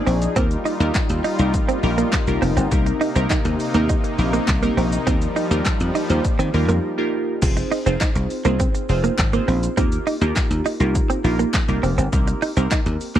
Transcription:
Already playing: F3 C4 D#4 F4 G#4 D5
0.07 A#1 C4, open hi-hat, shaker
0.22 closed hi-hat, shaker
0.36 D#2 G3 A#3 C4 D#4 F4 G4 A#4, kick, closed hi-hat, shaker
0.51 closed hi-hat, shaker
0.65 D#4, open hi-hat, shaker
0.80 D#2 A#3 D#4 F4 G4 A#4, muted clean electric guitar stroke, closed hi-hat, shaker
0.94 kick, snare, clap, closed hi-hat, shaker
1.09 D#2, closed hi-hat, shaker
1.24 D#4, open hi-hat, shaker
1.39 C2 A#3 D#4 F4 G4 A#4, closed hi-hat, shaker
1.54 kick, closed hi-hat, shaker
1.69 C4, closed hi-hat, shaker
1.83 A#1 A#3 D#4 F4 G4 A#4, muted clean electric guitar stroke, open hi-hat, shaker
1.98 A#3, closed hi-hat, shaker
2.12 muted clean electric guitar stroke, kick, snare, clap, closed hi-hat, shaker
2.27 C2 A#3 D#4 F4 G4 A#4, closed hi-hat, shaker
2.42 F1 C4, open hi-hat, shaker
2.57 G1 C4, closed hi-hat, shaker
2.71 C2 C3 A#3 C4 D#4 G4 A#4, kick, closed hi-hat, shaker
2.86 muted clean electric guitar stroke, closed hi-hat, shaker
3.01 D#4, open hi-hat, shaker
3.15 C2 A#3 C4 D#4 G4 A#4, closed hi-hat, shaker
3.30 D#4, kick, snare, clap, closed hi-hat, shaker
3.45 D#2, muted clean electric guitar stroke, closed hi-hat, shaker
3.60 open hi-hat, shaker
3.74 D#2 A#3 C4 D#4 G4 A#4, closed hi-hat, shaker
3.89 D#4, kick, closed hi-hat, shaker
4.04 muted clean electric guitar stroke, closed hi-hat, shaker
4.18 A#1 A#3 C4 D#4 G4 A#4, open hi-hat, shaker
4.33 A#3, closed hi-hat, shaker
4.48 C2, muted clean electric guitar stroke, kick, snare, clap, closed hi-hat, shaker
4.62 A#3 C4 D#4 G4 A#4, closed hi-hat, shaker
4.77 A#1 C4, open hi-hat, shaker
4.93 closed hi-hat, shaker
5.07 D#2 F3 G3 A#3 C4 D#4 F4 G4 A#4, kick, closed hi-hat, shaker
5.22 closed hi-hat, shaker
5.36 D#4, open hi-hat, shaker
5.51 D#2 A#3 D#4 F4 G4 A#4, muted clean electric guitar stroke, closed hi-hat, shaker
5.65 kick, snare, clap, closed hi-hat, shaker
5.80 F2, closed hi-hat, shaker
5.95 D#4, open hi-hat, shaker
6.10 D#2 A#3 D#4 F4 G4 C5, closed hi-hat, shaker
6.25 kick, closed hi-hat, shaker
6.39 D#3 C4, closed hi-hat, shaker
6.54 D#2 A#3 D#4 F4 G4 A#4, muted clean electric guitar stroke, open hi-hat, shaker
6.69 F2 A#3, closed hi-hat, shaker
6.98 A#3 D#4 F4 G4 A#4
7.42 F1 C4 D#4 F4 G#4 C5, kick, closed hi-hat, crash, shaker
7.57 muted clean electric guitar stroke, closed hi-hat, shaker
7.72 D#4, open hi-hat, shaker
7.86 F1 C4 D#4 F4 G#4 C5, closed hi-hat, shaker
8.00 D#4, kick, snare, clap, closed hi-hat, shaker
8.16 C2, muted clean electric guitar stroke, closed hi-hat, shaker
8.30 open hi-hat, shaker
8.45 C2 A#3 C4 D#4 F4 G#4 C5, closed hi-hat, shaker
8.60 C4, kick, closed hi-hat, shaker
8.75 muted clean electric guitar stroke, closed hi-hat, shaker
8.89 F1 C4 D#4 F4 G#4 C5, open hi-hat, shaker
9.04 A#3, closed hi-hat, shaker
9.18 G#1, muted clean electric guitar stroke, kick, snare, clap, closed hi-hat, shaker
9.33 A#3 C4 D#4 F4 G#4 C5, closed hi-hat, shaker
9.48 A#1 C4, open hi-hat, shaker
9.63 closed hi-hat, shaker
9.77 D#2 A#3 C4 D#4 F4 G4 A#4, kick, closed hi-hat, shaker
9.92 closed hi-hat, shaker
10.07 D#4, open hi-hat, shaker
10.21 D#2 A#3 D#4 F4 G4 A#4, muted clean electric guitar stroke, closed hi-hat, shaker
10.36 kick, snare, clap, closed hi-hat, shaker
10.51 D#2, closed hi-hat, shaker
10.66 D#4, open hi-hat, shaker
10.80 C2 A#3 D#4 F4 G4 A#4, closed hi-hat, shaker
10.95 kick, closed hi-hat, shaker
11.10 C4, closed hi-hat, shaker
11.24 A#1 A#3 D#4 F4 G4 A#4, muted clean electric guitar stroke, open hi-hat, shaker
11.39 A#3, closed hi-hat, shaker
11.53 muted clean electric guitar stroke, kick, snare, clap, closed hi-hat, shaker
11.68 C2 A#3 D#4 F4 G4 A#4, closed hi-hat, shaker
11.83 F1 C4, open hi-hat, shaker
11.98 G1 C4, closed hi-hat, shaker
12.12 C2 A#3 C4 D#4 G4 A#4, kick, closed hi-hat, shaker
12.27 muted clean electric guitar stroke, closed hi-hat, shaker
12.42 D#4, open hi-hat, shaker
12.57 C2 A#3 C4 D#4 G4 A#4, closed hi-hat, shaker
12.71 D#4, kick, snare, clap, closed hi-hat, shaker
12.86 D#2, muted clean electric guitar stroke, closed hi-hat, shaker
13.01 open hi-hat, shaker
13.15 D#2 A#3 C4 D#4 G4 A#4, closed hi-hat, shaker

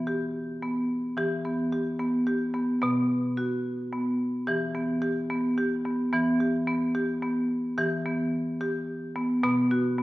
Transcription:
Already playing: E3
0.07 G4
0.63 B3
1.17 E3 G4
1.45 B3
1.73 G4
1.99 B3
2.27 G4
2.54 B3
2.81 B2 B3
3.37 F#4
3.92 B3
4.47 E3 G4
4.75 B3
5.02 G4
5.30 B3
5.58 G4
5.85 B3
6.13 E3 B3
6.40 G4
6.67 B3
6.95 G4
7.23 B3
7.78 E3 G4
8.06 B3
8.61 G4
9.16 B3
9.43 B2 B3
9.71 F#4
9.98 B3

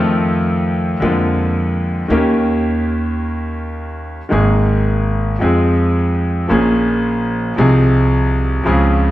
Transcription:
Already playing: F2 D#3 F3 A3 C4 F4
1.00 F2 D3 F3 G#3 A#3 F4
2.08 D#2 D#3 A#3 C#4 G4
4.29 G#1 G#2 D#3 G#3 A#3 G#4
5.40 F2 F3 G#3 C4 G#4
6.48 A#1 A#2 F3 A#3 C#4
6.52 G#4
7.56 C2 C3 F3 C4 D#4 G#4
8.63 C#2 C#3 F3 C4 C#4
8.68 G#4

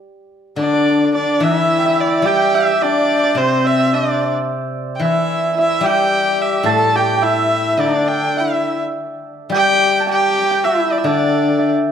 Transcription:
0.56 D3 D4 D5
0.66 D5
0.73 D5
0.81 D5
0.90 D5
0.98 D5
1.05 D5
1.14 D4 D5
1.40 E3 E4 E5
1.45 E5
1.79 G5
1.86 E5
2.00 D5
2.22 G3 G4 G5
2.27 G5
2.54 E5
2.82 D4 D5
3.24 D5
3.35 C3 C4 C5
3.64 E5
3.86 E5
3.93 D4 D5
4.95 G5
4.99 E3 E4 E5
5.04 E5
5.56 E4 E5
5.81 G3 G5
5.85 G4 G5
6.41 E5
6.63 A2 A4 A5
6.69 A5
6.96 G4 G5
7.16 G5
7.22 E4 E5
7.73 E5
7.77 D3 D4 D5
8.08 G5
8.37 E4 E5
9.50 G3 G4 G5
9.54 G5
10.00 A5
10.07 G4 G5
10.51 G5
10.64 E4 E5
10.92 D5
10.98 E5
11.04 D3 D4 D5
11.59 E5

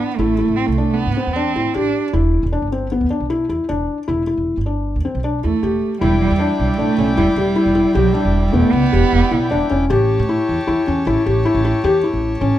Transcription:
Already playing: B3
0.17 A1 A3 E4
0.39 E4
0.48 A1
0.56 C4
0.66 C2 A3
0.78 D4
0.94 B3
1.06 A2
1.17 C4
1.27 E2
1.33 C4 D4
1.56 A2 E4
1.74 A1 D4 G4
2.13 E1 E4
2.43 E1
2.52 D4
2.62 G1
2.72 C4
2.92 B3
3.01 E2
3.10 D4
3.20 B1
3.30 E4
3.49 E2 E4
3.69 E1 D4
4.08 E1 E4
4.27 E4
4.37 E1
4.57 G1
4.66 D4
4.96 E2
5.05 C4
5.15 B1
5.24 D4
5.43 E2 A3 E4
5.63 E1 G4
6.00 E1 G3 E4 D5 G5
6.21 G3
6.31 E2
6.39 D4
6.58 B1 G3
6.77 B1 A3 D4
6.98 B1 C#4
7.16 E1 G3 E4
7.34 E1 G3 G4
7.56 E4
7.66 E1
7.75 E4
7.93 B1 F#3 G4
8.13 G3 D4
8.25 E1
8.52 E1 A3 B3
8.72 C#2 B3
8.92 E1 G4
9.13 E1
9.31 B1 E4
9.51 E1 D4
9.70 E1 C#4
9.90 A1 G4 C#5 A5
10.19 A2
10.29 E4
10.49 E2
10.67 E2 E4
10.87 E2 C#4
11.07 A1 E4
11.26 A1 G4
11.45 E4
11.54 A1
11.65 E4
11.84 E2 G4
12.04 E4
12.13 A1
12.41 A1 C#4

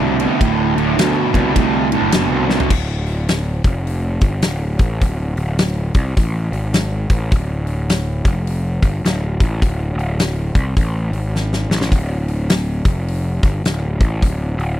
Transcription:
Already playing: D2 B2
0.00 C2
0.19 D2 B2, ride
0.40 D1 D2 A2, kick, ride
0.76 D1 D2 A2, ride
0.98 D2 B2, snare, ride
1.33 C2 D2 B2, kick, ride
1.55 D2 A2, kick, ride
1.92 D2 A2, ride
2.02 F#1
2.12 D2 B2, snare, ride
2.30 C2
2.48 D2 B2, snare
2.60 floor tom
2.70 D1, kick, crash
3.06 open hi-hat
3.28 snare, open hi-hat
3.64 F1, kick, open hi-hat
3.87 open hi-hat
4.21 G1, kick, open hi-hat
4.42 D1, snare, open hi-hat
4.79 A1, kick, open hi-hat
5.01 D1, kick, open hi-hat
5.36 D1, open hi-hat
5.58 snare, open hi-hat
5.94 C2, kick, open hi-hat
6.17 A1, kick, open hi-hat
6.51 G#1, open hi-hat
6.74 snare, open hi-hat
7.10 A1, kick, open hi-hat
7.32 D1, kick, open hi-hat
7.67 open hi-hat
7.89 snare, open hi-hat
8.25 F1, kick, open hi-hat
8.47 open hi-hat
8.82 G1, kick, open hi-hat
9.03 D1, snare, open hi-hat
9.40 A1, kick, open hi-hat
9.62 D1, kick, open hi-hat
9.94 D1
9.99 open hi-hat
10.19 snare, open hi-hat
10.55 C2, kick, open hi-hat
10.77 A1, kick, open hi-hat
11.11 G#1, open hi-hat
11.36 snare
11.53 snare
11.70 A1, snare
11.81 snare
11.91 D1, kick, open hi-hat
12.28 open hi-hat
12.49 snare, open hi-hat
12.85 F1, kick, open hi-hat
13.08 open hi-hat
13.43 G1, kick, open hi-hat
13.64 D1, snare, open hi-hat
14.00 A1, kick, open hi-hat
14.22 D1, kick, open hi-hat
14.57 D1, open hi-hat

